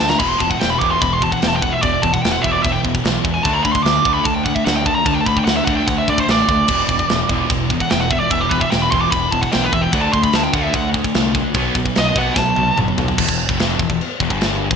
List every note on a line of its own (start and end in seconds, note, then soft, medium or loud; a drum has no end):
0.00 0.14 D2 medium
0.00 0.18 D3 medium
0.00 0.18 A3 medium
0.00 0.19 A3 medium
0.00 0.20 D4 loud
0.10 0.19 A#5 medium
0.10 snare loud
0.19 0.33 E1 medium
0.19 0.39 E2 medium
0.19 0.39 B2 medium
0.19 0.39 E3 loud
0.19 0.29 B5 medium
0.19 kick loud
0.19 china medium
0.19 crash medium
0.29 0.40 C6 loud
0.38 0.54 E1 medium
0.38 0.59 E2 medium
0.38 0.59 B2 medium
0.38 0.50 A5 loud
0.38 kick medium
0.50 0.59 F#5 medium
0.50 kick medium
0.59 0.75 E1 medium
0.59 0.79 E2 medium
0.59 0.80 B2 medium
0.59 0.70 G5 medium
0.59 snare loud
0.59 china medium
0.70 0.79 B5 medium
0.79 0.95 E1 medium
0.79 1.00 E2 medium
0.79 1.00 B2 medium
0.79 1.01 E3 loud
0.79 0.90 D6 loud
0.79 kick medium
0.91 1.02 C6 medium
1.02 1.28 E1 medium
1.02 1.20 E2 medium
1.02 1.20 B2 medium
1.02 1.13 B5 loud
1.02 kick loud
1.02 china medium
1.13 1.22 C6 medium
1.22 1.40 E2 medium
1.22 1.40 B2 medium
1.22 1.32 A5 loud
1.22 kick medium
1.32 1.43 F#5 medium
1.32 kick medium
1.42 1.69 E1 medium
1.42 1.60 E2 medium
1.42 1.60 B2 medium
1.42 1.48 G5 medium
1.42 snare loud
1.42 china medium
1.48 1.55 A5 loud
1.56 1.62 G5 medium
1.62 1.80 E2 medium
1.62 1.81 B2 medium
1.62 1.72 F#5 medium
1.62 kick medium
1.72 1.82 E5 medium
1.82 1.96 E1 loud
1.82 2.01 E2 medium
1.82 2.01 B2 medium
1.82 3.45 E3 loud
1.82 2.02 D5 medium
1.82 kick loud
1.82 china medium
2.02 2.16 E1 medium
2.02 2.21 E2 medium
2.02 2.21 B2 medium
2.02 2.13 A5 loud
2.02 kick medium
2.13 2.23 F#5 medium
2.13 kick medium
2.23 2.37 E1 medium
2.23 2.41 E2 medium
2.23 2.42 B2 medium
2.23 2.31 G5 medium
2.23 snare loud
2.23 china medium
2.32 2.42 F#5 medium
2.42 2.57 E1 medium
2.42 2.62 E2 medium
2.42 2.63 B2 medium
2.42 2.63 E3 loud
2.42 2.52 E5 medium
2.42 kick medium
2.53 2.63 D5 medium
2.63 2.77 E1 loud
2.63 2.82 E2 medium
2.63 2.82 B2 medium
2.63 2.73 E5 medium
2.63 kick loud
2.63 china medium
2.72 2.79 G5 loud
2.85 2.97 E1 medium
2.85 3.03 E2 medium
2.85 3.03 B2 medium
2.85 kick medium
2.95 kick medium
3.04 3.17 B1 medium
3.04 3.22 E2 medium
3.04 3.23 B2 medium
3.04 snare loud
3.04 china medium
3.24 3.43 E2 medium
3.24 3.37 E2 medium
3.24 3.43 B2 medium
3.24 kick medium
3.34 3.44 G#5 medium
3.43 3.58 D2 loud
3.43 3.63 D3 medium
3.43 3.63 A3 loud
3.43 3.64 D4 loud
3.43 3.54 A5 medium
3.43 kick loud
3.43 china medium
3.54 3.63 A#5 loud
3.63 3.78 D2 medium
3.63 3.83 D3 medium
3.63 3.83 A3 medium
3.63 3.72 B5 loud
3.63 kick medium
3.72 3.83 C6 medium
3.72 kick medium
3.83 3.98 D2 medium
3.83 4.03 D3 medium
3.83 4.04 A3 loud
3.83 4.12 D6 loud
3.83 snare loud
3.83 china medium
4.05 4.18 D2 medium
4.05 4.24 D3 medium
4.05 4.25 A3 medium
4.05 4.25 D4 loud
4.05 kick medium
4.14 4.25 B5 medium
4.24 4.52 D2 loud
4.24 4.44 D3 medium
4.24 4.44 A3 medium
4.24 4.34 A5 loud
4.24 kick loud
4.24 china medium
4.34 4.44 G5 medium
4.45 4.64 D3 medium
4.45 4.64 A3 medium
4.45 4.55 F#5 loud
4.45 kick medium
4.55 4.65 E5 medium
4.55 kick medium
4.65 4.93 D2 medium
4.65 4.84 D3 medium
4.65 4.84 A3 medium
4.65 4.76 F#5 medium
4.65 snare loud
4.65 china medium
4.76 4.86 G5 medium
4.85 5.04 D3 medium
4.85 5.04 A3 medium
4.85 4.95 A5 loud
4.85 kick medium
4.95 5.06 A#5 loud
5.06 5.19 D2 loud
5.06 5.25 D3 medium
5.06 5.25 A3 medium
5.06 6.68 D4 loud
5.06 5.13 A5 medium
5.06 kick loud
5.06 china medium
5.12 5.20 G5 medium
5.21 5.26 A5 medium
5.26 5.40 D2 medium
5.26 5.45 D3 medium
5.26 5.45 A3 medium
5.26 5.37 B5 loud
5.26 kick medium
5.36 5.44 G5 medium
5.36 kick medium
5.44 5.60 D2 medium
5.44 5.65 D3 medium
5.44 5.65 A3 medium
5.44 5.56 F#5 medium
5.44 snare loud
5.44 china medium
5.57 5.64 E5 medium
5.65 5.80 D2 medium
5.65 5.86 D3 medium
5.65 5.87 A3 medium
5.65 5.87 D4 loud
5.65 5.76 F#5 medium
5.65 kick medium
5.77 5.86 G5 loud
5.86 6.01 D2 medium
5.86 6.06 D3 medium
5.86 6.06 A3 medium
5.86 5.97 F#5 medium
5.86 kick loud
5.86 china medium
5.98 6.08 E5 medium
6.08 6.21 D2 medium
6.08 6.27 D3 medium
6.08 6.27 A3 medium
6.08 6.19 D5 medium
6.08 kick medium
6.18 6.30 C5 medium
6.18 kick medium
6.28 6.41 A1 medium
6.28 6.47 D3 medium
6.28 6.47 A3 medium
6.28 7.51 D5 medium
6.28 snare loud
6.28 china medium
6.48 6.61 D2 medium
6.48 6.67 D3 medium
6.48 6.67 A3 medium
6.48 kick medium
6.68 6.82 E1 loud
6.68 6.88 E2 medium
6.68 6.88 B2 medium
6.68 6.89 E3 loud
6.68 kick loud
6.68 china medium
6.68 crash loud
6.89 7.02 E1 medium
6.89 7.08 E2 medium
6.89 7.08 B2 medium
6.89 kick medium
6.99 kick medium
7.09 7.23 E1 medium
7.09 7.28 E2 medium
7.09 7.28 B2 medium
7.09 snare loud
7.09 china medium
7.29 7.43 E1 medium
7.29 7.49 E2 medium
7.29 7.50 B2 medium
7.29 7.50 E3 loud
7.29 kick medium
7.50 7.76 E1 loud
7.50 7.69 E2 medium
7.50 7.69 B2 medium
7.50 kick loud
7.50 china medium
7.70 7.89 E2 medium
7.70 7.89 B2 medium
7.70 kick medium
7.80 7.91 F#5 loud
7.80 kick medium
7.90 8.18 E1 medium
7.90 8.10 E2 medium
7.90 8.09 B2 medium
7.90 8.00 G5 medium
7.90 snare loud
7.90 china medium
8.01 8.11 F#5 medium
8.11 8.30 E2 medium
8.11 8.30 B2 medium
8.11 8.19 E5 medium
8.11 kick loud
8.20 8.31 D5 medium
8.30 8.45 E1 loud
8.30 8.50 E2 medium
8.30 8.50 B2 medium
8.30 9.94 E3 medium
8.30 8.41 E5 loud
8.30 kick loud
8.30 china medium
8.41 8.51 G4 medium
8.49 8.64 E1 medium
8.49 8.70 E2 medium
8.49 8.70 B2 medium
8.49 8.60 B4 medium
8.49 kick medium
8.61 8.71 E5 medium
8.61 kick medium
8.70 8.86 E1 medium
8.70 8.90 E2 medium
8.70 8.91 B2 medium
8.70 8.81 G5 medium
8.70 snare loud
8.70 china medium
8.82 8.91 B5 medium
8.91 9.05 E1 medium
8.91 9.11 E2 loud
8.91 9.11 B2 medium
8.91 9.12 E3 loud
8.91 9.01 C6 loud
8.91 kick medium
9.01 9.11 D6 loud
9.11 9.26 E1 medium
9.11 9.31 E2 medium
9.11 9.31 B2 medium
9.11 9.31 B5 loud
9.11 kick loud
9.11 china medium
9.31 9.46 E1 medium
9.31 9.51 E2 medium
9.31 9.51 B2 medium
9.31 9.41 A5 loud
9.31 kick medium
9.41 9.52 F#5 medium
9.41 kick medium
9.52 9.68 B1 medium
9.52 9.72 E2 medium
9.52 9.72 B2 medium
9.52 9.63 G5 loud
9.52 snare loud
9.52 china medium
9.62 9.73 B4 medium
9.72 9.86 E1 medium
9.72 9.92 E2 medium
9.72 9.92 B2 medium
9.72 9.83 E5 loud
9.72 kick medium
9.82 9.93 G5 loud
9.92 10.07 D2 loud
9.92 10.12 D3 medium
9.92 10.13 A3 loud
9.92 10.14 D4 medium
9.92 10.01 F#5 medium
9.92 kick loud
9.92 china medium
10.01 10.12 A5 loud
10.13 10.27 D2 medium
10.13 10.32 D3 medium
10.13 10.33 A3 medium
10.13 10.23 C6 loud
10.13 kick medium
10.23 10.34 B5 loud
10.23 kick medium
10.33 10.47 D2 medium
10.33 10.53 D3 medium
10.33 10.53 A3 medium
10.33 10.43 A5 medium
10.33 snare loud
10.33 china medium
10.43 10.54 G5 medium
10.54 10.67 D2 medium
10.54 10.73 D3 medium
10.54 10.73 A3 loud
10.54 10.74 D4 loud
10.54 10.63 F#5 loud
10.54 kick medium
10.63 10.74 E5 medium
10.73 11.01 D2 loud
10.73 10.93 D3 medium
10.73 10.93 A3 medium
10.73 10.88 F#5 loud
10.73 kick loud
10.73 china medium
10.94 11.13 D3 medium
10.94 11.13 A3 medium
10.94 kick medium
11.04 kick medium
11.14 11.42 C2 medium
11.14 11.33 D3 medium
11.14 11.33 A3 medium
11.14 snare loud
11.14 china medium
11.34 11.54 D3 medium
11.34 11.54 A3 loud
11.34 kick medium
11.54 11.68 B1 loud
11.54 11.74 B2 medium
11.54 11.75 F#3 loud
11.54 11.76 B3 loud
11.54 kick loud
11.54 china medium
11.75 11.89 B1 medium
11.75 11.94 B2 medium
11.75 11.95 F#3 medium
11.75 kick medium
11.86 kick medium
11.95 12.10 B1 medium
11.95 12.15 B2 medium
11.95 12.15 F#3 medium
11.95 12.17 D#5 medium
11.95 snare loud
11.95 china medium
12.16 12.29 B1 medium
12.16 12.36 B2 medium
12.16 12.36 F#3 loud
12.16 12.36 B3 loud
12.16 12.38 F#5 loud
12.16 kick medium
12.36 12.50 B1 loud
12.36 12.56 B2 medium
12.36 12.56 F#3 medium
12.36 12.78 A5 medium
12.36 kick loud
12.36 snare medium
12.56 12.71 B1 medium
12.56 12.76 B2 medium
12.56 12.76 F#3 medium
12.56 high tom medium
12.78 12.91 F#1 medium
12.78 12.97 B2 medium
12.78 12.97 F#3 loud
12.78 mid tom loud
12.88 mid tom medium
12.98 13.11 B1 medium
12.98 13.17 B2 medium
12.98 13.17 F#3 medium
12.98 floor tom loud
13.08 floor tom loud
13.18 13.28 E1 loud
13.18 13.28 E2 loud
13.18 kick loud
13.18 crash loud
13.18 china medium
13.28 13.48 E1 medium
13.28 13.45 E2 medium
13.28 kick medium
13.49 13.77 F1 medium
13.49 13.79 F2 loud
13.49 kick loud
13.60 snare loud
13.60 china medium
13.79 13.89 E1 medium
13.79 13.88 E2 medium
13.79 kick medium
13.89 13.99 E1 medium
13.89 14.00 E2 medium
13.89 kick medium
14.01 china medium
14.20 14.30 E1 medium
14.20 14.29 E2 loud
14.20 kick loud
14.29 14.68 G1 loud
14.29 14.70 G2 loud
14.29 kick medium
14.41 snare loud
14.41 china medium
14.70 14.76 E1 medium
14.70 14.76 E2 medium
14.70 kick loud